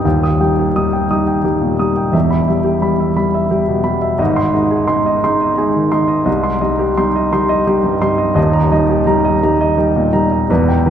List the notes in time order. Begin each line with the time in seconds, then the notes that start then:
0.04 D#1 D#2 G5
0.23 D#6
0.41 G3 D#4 G5
0.59 G4
0.76 G3 D#4 D#6
0.93 G5
1.11 G3 D#4 D#6
1.27 G5
1.44 G3 D#4 G4
1.61 A#2
1.79 G3 D#4 D#6
1.97 G5
2.12 E1 E2 E5
2.30 B5
2.48 G3 E5
2.64 G4
2.82 G3 B5
3.00 E5
3.16 G3 B5
3.34 E5
3.51 G3 G4
3.68 B2
3.84 G3 B5
4.02 E5
4.18 G#1 G#2 D#5
4.36 C6
4.54 G#3 D#4 D#5
4.71 G#4
4.87 G#3 D#4 C6
5.06 D#5
5.24 G#3 D#4 C6
5.41 D#5
5.58 G#3 D#4 G#4
5.75 D#3
5.92 G#3 D#4 C6
6.08 D#5
6.25 C2 D#5
6.43 C6
6.61 G3 D#4 D#5
6.79 G4
6.98 G3 D#4 C6
7.16 D#5
7.33 G3 D#4 C6
7.49 D#5
7.67 G3 D#4 G4
7.84 G2
8.01 G3 D#4 C6
8.18 D#5
8.34 D#1 D#2 D#5
8.53 A#5
8.72 G3 D#4 D#5
8.90 G4
9.07 G3 D#4 A#5
9.25 D#5
9.43 G3 D#4 A#5
9.61 D#5
9.77 G3 D#4 G4
9.96 A#2
10.13 G3 D#4 A#5
10.32 D#5
10.49 E1 E2 B4
10.69 G5
10.86 E3 B3 B4